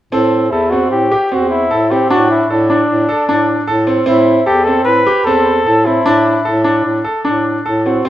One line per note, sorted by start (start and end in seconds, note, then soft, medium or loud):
0.12 0.47 A2 medium
0.12 0.45 C4 medium
0.12 0.52 A4 medium
0.51 0.93 E2 medium
0.51 0.72 E4 medium
0.51 0.69 A4 medium
0.70 1.04 C4 medium
0.70 0.91 F#4 medium
0.91 1.09 A2 medium
0.91 1.34 G4 medium
1.12 1.28 G4 medium
1.32 1.66 E2 medium
1.32 1.64 C4 medium
1.32 1.49 F#4 medium
1.50 1.92 E4 medium
1.71 2.05 A2 medium
1.71 1.87 A4 medium
1.91 2.07 C4 medium
1.91 2.09 G4 medium
2.10 2.44 A2 medium
2.10 2.42 D4 medium
2.10 2.29 F#4 medium
2.30 2.49 E4 medium
2.50 2.84 A2 medium
2.50 3.64 D4 medium
2.50 2.66 A4 medium
2.70 3.01 D4 medium
2.90 3.06 A2 medium
3.09 3.25 A4 medium
3.28 3.62 A2 medium
3.28 3.60 D4 medium
3.67 4.01 A2 medium
3.67 3.83 A4 medium
3.87 4.03 C4 medium
4.06 4.41 A2 medium
4.06 4.38 C4 medium
4.06 4.44 E4 medium
4.46 4.88 E2 medium
4.46 4.66 G4 medium
4.46 4.62 A4 medium
4.65 4.99 C4 medium
4.65 4.84 A4 medium
4.85 5.03 A2 medium
4.85 5.26 B4 medium
5.07 5.23 G4 medium
5.25 5.60 E2 medium
5.25 5.59 C4 medium
5.25 5.88 A4 medium
5.66 6.00 A2 medium
5.66 5.82 A4 medium
5.86 6.02 C4 medium
5.86 6.65 E4 medium
6.05 6.39 A2 medium
6.05 6.38 D4 medium
6.45 6.79 A2 medium
6.45 6.61 A4 medium
6.64 6.97 D4 medium
6.84 7.02 A2 medium
7.04 7.21 A4 medium
7.25 7.60 A2 medium
7.25 7.57 D4 medium
7.66 8.00 A2 medium
7.66 7.82 A4 medium
7.86 8.02 C4 medium
7.86 8.08 F#4 medium
8.05 8.09 C4 medium